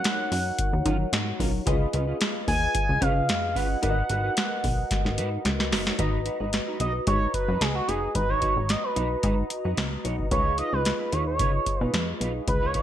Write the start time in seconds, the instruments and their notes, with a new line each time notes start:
Already playing: analog polysynth D#4 F#4 A#4 C#5, analog synth lead F#5
0.04 muted clean electric guitar stroke, snare, closed hi-hat
0.19 muted clean electric guitar stroke
0.32 analog synth bass F#2, open hi-hat
0.46 muted clean electric guitar stroke
0.59 muted clean electric guitar stroke, kick, closed hi-hat
0.73 analog synth bass D#2, muted clean electric guitar stroke
0.85 analog synth bass D#3, clean electric guitar F#3 C#4 F4, kick, closed hi-hat
1.00 muted clean electric guitar stroke
1.13 analog synth bass G#2, snare, closed hi-hat
1.27 muted clean electric guitar stroke
1.39 analog synth bass B1, clean electric guitar F#3 C#4 F4, kick, open hi-hat
1.54 muted clean electric guitar stroke
1.66 analog synth bass C#2, clean electric guitar C#4 F4 B4, analog polysynth F4 G#4 B4 D#5, kick, closed hi-hat
1.93 analog synth bass C#2, clean electric guitar C#4 F4 B4, closed hi-hat
2.07 clean electric guitar C#4 F4 B4
2.20 muted clean electric guitar stroke, snare, closed hi-hat
2.34 muted clean electric guitar stroke
2.48 analog synth bass D#2, analog synth lead G#5, kick, open hi-hat
2.61 muted clean electric guitar stroke
2.74 muted clean electric guitar stroke, kick, closed hi-hat
2.88 analog synth bass C#2, muted clean electric guitar stroke
3.01 analog synth bass C#3, clean electric guitar C#4 F4 B4, analog synth lead F5, kick, closed hi-hat
3.16 muted clean electric guitar stroke
3.28 analog synth bass F2, muted clean electric guitar stroke, snare, closed hi-hat
3.43 muted clean electric guitar stroke
3.55 analog synth bass F#1, clean electric guitar C#4 F4 B4, analog synth lead F#5, kick, open hi-hat
3.70 muted clean electric guitar stroke
3.82 analog synth bass G#1, clean electric guitar D#4 F#4 B4, analog polysynth F#4 A#4 B4 D5, kick, closed hi-hat
3.90 analog polysynth D#5
4.09 analog synth bass G#1, clean electric guitar D#4 F#4 B4, closed hi-hat
4.24 clean electric guitar D#4 F#4 B4
4.37 muted clean electric guitar stroke, snare, closed hi-hat
4.51 muted clean electric guitar stroke
4.64 analog synth bass B1, kick, open hi-hat
4.78 muted clean electric guitar stroke
4.91 muted clean electric guitar stroke, kick, snare, closed hi-hat
5.05 analog synth bass G#1, muted clean electric guitar stroke, snare
5.18 analog synth bass G#2, clean electric guitar D#4 F#4 B4, closed hi-hat
5.32 muted clean electric guitar stroke
5.45 analog synth bass C#2, muted clean electric guitar stroke, snare, closed hi-hat
5.59 muted clean electric guitar stroke, snare
5.71 analog synth bass F#1, clean electric guitar D#4 F#4 B4, snare, open hi-hat
5.86 clean electric guitar D#4 F#4 C#5, snare
5.98 analog synth bass G#1, clean electric guitar D#4 F#4 B4, analog polysynth F#4 B4 D#5 A#5, kick, closed hi-hat
6.25 clean electric guitar D#4 F#4 B4, closed hi-hat
6.40 analog synth bass G#1, clean electric guitar D#4 F#4 B4
6.53 muted clean electric guitar stroke, snare, closed hi-hat
6.67 clean electric guitar D#4 F#4 B4
6.80 analog synth bass B1, clean electric guitar D#4 F#4 B4, analog synth lead D#5, closed hi-hat
6.94 muted clean electric guitar stroke
7.07 analog synth bass G#2, clean electric guitar D#4 F#4 B4, analog synth lead C#5, kick, closed hi-hat
7.21 muted clean electric guitar stroke
7.34 analog synth lead B4, muted clean electric guitar stroke, kick, closed hi-hat
7.48 analog synth bass F#2, clean electric guitar D#4 F#4 B4
7.61 analog synth bass C#2, analog synth lead G#4, snare, closed hi-hat
7.75 analog synth lead F#4, muted clean electric guitar stroke
7.88 analog synth bass F#1, clean electric guitar D#4 F#4 B4, analog synth lead G#4, closed hi-hat
8.02 muted clean electric guitar stroke
8.15 analog synth bass G#1, analog synth lead B4, muted clean electric guitar stroke, kick, closed hi-hat
8.29 clean electric guitar D#4 F#4 B4, analog synth lead C#5
8.42 clean electric guitar D#4 F#4 B4, kick, closed hi-hat
8.56 analog synth bass G#1
8.69 analog synth lead D#5, muted clean electric guitar stroke, snare, closed hi-hat
8.83 analog synth lead B4, muted clean electric guitar stroke
8.96 analog synth bass B1, clean electric guitar D#4 F#4 B4, closed hi-hat
9.11 muted clean electric guitar stroke
9.23 analog synth bass G#2, clean electric guitar D#4 F#4 B4, kick, closed hi-hat
9.37 muted clean electric guitar stroke
9.50 muted clean electric guitar stroke, closed hi-hat
9.65 analog synth bass F#2, clean electric guitar D#4 F#4 B4
9.77 analog synth bass C#2, snare, closed hi-hat
9.92 muted clean electric guitar stroke
10.04 analog synth bass B1, clean electric guitar D#4 F#4 C#5, closed hi-hat
10.19 muted clean electric guitar stroke, kick
10.31 analog synth bass C#2, clean electric guitar D#4 F4 B4, analog polysynth F4 G#4 B4 C#5, analog synth lead C#5, kick, closed hi-hat
10.39 analog polysynth D#5
10.58 clean electric guitar D#4 F4 B4, analog synth lead D#5, closed hi-hat
10.73 analog synth bass C#2, clean electric guitar D#4 F4 B4, analog synth lead B4
10.85 snare, closed hi-hat
10.99 clean electric guitar D#4 F4 B4
11.12 analog synth bass D#2, clean electric guitar D#4 F4 B4, analog synth lead C#5, closed hi-hat
11.27 analog synth lead C#5, muted clean electric guitar stroke
11.39 analog synth bass C#3, clean electric guitar D#4 F4 B4, kick, closed hi-hat
11.54 muted clean electric guitar stroke
11.66 muted clean electric guitar stroke, kick, closed hi-hat
11.81 analog synth bass B2, clean electric guitar D#4 F4 B4, analog synth lead B4
11.94 analog synth bass F2, snare, closed hi-hat
12.08 muted clean electric guitar stroke
12.20 analog synth bass B1, clean electric guitar D#4 F4 B4, closed hi-hat
12.35 muted clean electric guitar stroke
12.47 analog synth bass C#2, analog synth lead B4, muted clean electric guitar stroke, kick, closed hi-hat
12.62 clean electric guitar D#4 F4 B4, analog synth lead C#5
12.74 clean electric guitar D#4 F4 B4, kick, closed hi-hat